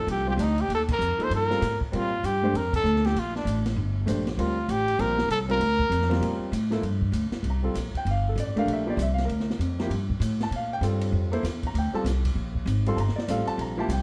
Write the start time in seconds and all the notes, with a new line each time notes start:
Already playing: F3 A#3 D#4 A4
0.07 C2, ride
0.11 G4
0.26 G3 C4 F4 G4
0.30 G4
0.37 D2 D4 D#4, hi-hat pedal, ride
0.58 G4, ride
0.69 D#2, ride
0.75 A4
0.88 A#4, kick, crash
0.99 F2, hi-hat pedal
1.18 F3 A#3 D#4 A4, muted upright bass stroke, ride
1.24 C5
1.30 G2, ride
1.35 A#4
1.50 G3 C4 F4 A4, snare
1.62 A2, snare, hi-hat pedal, ride
1.80 muted upright bass stroke, kick
1.92 A#2 G3 C4 F4 A#4, ride
1.97 F4
2.23 G2 G4, hi-hat pedal, ride
2.43 A3 D4 G4 C5
2.54 F2 A#4, ride
2.73 A4, kick, crash
2.83 D2, hi-hat pedal
2.96 snare
3.04 G4, snare, ride
3.15 A#1, ride
3.19 F4
3.36 D4, snare
3.45 A1, hi-hat pedal, ride
3.65 snare, ride
3.76 G1
4.06 A#1 A3 D4 G4 C5, hi-hat pedal, ride
4.27 snare, ride
4.37 D2 G3 C4 F4 A#4, ride
4.68 A1 G4, hi-hat pedal, ride
4.88 ride
4.98 A#1 G3 C4 F4 G4 A#4, ride
5.18 snare
5.28 C2 A4, hi-hat pedal, ride
5.48 G3 C4 F4 A#4, ride
5.59 D2, ride
5.79 kick
5.90 F2, hi-hat pedal, ride
6.02 snare
6.09 G3 C4 F4 A#4, snare, ride
6.21 A#2, ride
6.39 muted upright bass stroke
6.52 A2, hi-hat pedal, ride
6.70 F3 A#3 E4 A4, snare, ride
6.81 G2, ride
7.02 kick
7.12 D2, hi-hat pedal, ride
7.31 muted upright bass stroke, snare, ride
7.43 C2, ride
7.50 A#5
7.63 G3 C4 F4 A4
7.74 A#1, hi-hat pedal, ride
7.94 G5, muted upright bass stroke, kick, ride
8.05 G1, ride
8.11 F5
8.29 A4
8.36 A1, hi-hat pedal, ride
8.40 D5
8.55 A3 D4 G4 A#4 F5, muted upright bass stroke, ride
8.66 A#1, ride
8.73 E5
8.86 F3 A#3 E4 G4 D5
8.97 C2, hi-hat pedal, ride
9.02 E5
9.14 F5
9.18 snare, ride
9.25 D2 A#4
9.29 ride
9.40 snare
9.50 snare
9.59 F2, hi-hat pedal, ride
9.79 F3 A#3 E4 G4, snare, ride
9.90 G2, ride
10.10 kick
10.20 A2, hi-hat pedal, ride
10.41 A5, snare, ride
10.51 A#2, ride
10.56 F5
10.73 G5
10.81 G2 G3 C4 F4 A4, hi-hat pedal, ride
11.01 ride
11.12 F2
11.32 A#3 E4 A4 C5, ride
11.43 E2, snare, hi-hat pedal, ride
11.63 A#5, kick, ride
11.74 D2, ride
11.79 G5
11.93 G3 C4 F4 A4 A5, muted upright bass stroke
12.04 C2, snare, hi-hat pedal, ride
12.25 kick, ride
12.35 A#1
12.55 kick
12.66 G#1, hi-hat pedal, ride
12.86 G3 C4 F4 A4 C6, ride
12.96 G1 A5 A#5, ride
13.09 snare
13.16 D5, muted upright bass stroke, snare
13.28 A1 G3 C4 F4 A4 F5, hi-hat pedal, ride
13.47 A5, muted upright bass stroke, ride
13.58 A#1 A#5, ride
13.77 F3 A#3 E4 G4 A5
13.89 C2, hi-hat pedal, ride
13.93 G5